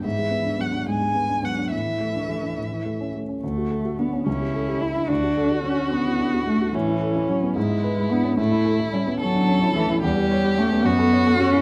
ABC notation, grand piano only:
X:1
M:6/8
L:1/16
Q:3/8=73
K:D
V:1 name="Grand piano"
^G,, ^G, B, D B, D G,, G, B, D B, D | A,, E, A, D A, D A,, E, A, C A, C | D,, F A F D C C,, G A G E D | D,, F A F D C D E D F A, F |
A,, E A E C B, ^G,, E B E D C | A,, E A E C B, C D C E A, E | E,, G c G C B, F,, A c A F E |]